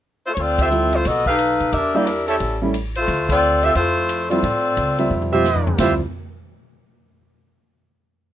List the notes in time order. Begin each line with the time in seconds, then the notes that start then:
0.26 A3 E4 F4 C5
0.34 D2 C#5, ride
0.39 C4 F4 A4 D5
0.58 C4 F4 G4 A4 C5 E5, kick, ride
0.70 G3 C4 E4 F4, hi-hat pedal
0.93 A3 E4 F4 C5, ride
1.05 B1 B3 F#4 A4 D#5, snare, ride
1.26 D#4 G4 A4 B4 F5, kick
1.39 hi-hat pedal, ride
1.60 B2, ride
1.72 E2 D4 G4 A#4 E5, ride
1.94 G3 A#3 D4 E4 G4 D5
2.06 G3 D4 E4 A#4, hi-hat pedal, ride
2.27 G3 C#4 E4 G4 A4 C#5 E5, ride
2.40 A1, ride
2.62 G3 A3 C#4 E4
2.74 hi-hat pedal, ride
2.95 A3 E4 F4 C5, ride
3.08 D2, ride
3.29 C4 F4 A4 D5, kick, ride
3.42 hi-hat pedal
3.63 C4 F4 G4 A4 C5 E5, ride
3.75 F2 A3 E4 F4 C5, ride
4.09 hi-hat pedal, ride
4.30 F3 G3 C4 E4 F4 A4 D5, ride
4.43 A2, ride
4.77 C#2, hi-hat pedal, ride
4.98 F3 G3 C4 E5, ride
5.11 F2, mid tom
5.22 mid tom
5.32 F3 G3 C4 F4 G4 C5 E5, mid tom
5.44 snare, hi-hat pedal
5.55 floor tom
5.67 floor tom
5.78 D2 F3 G3 C4 E4 F4 G4 C5 E5, snare, ride bell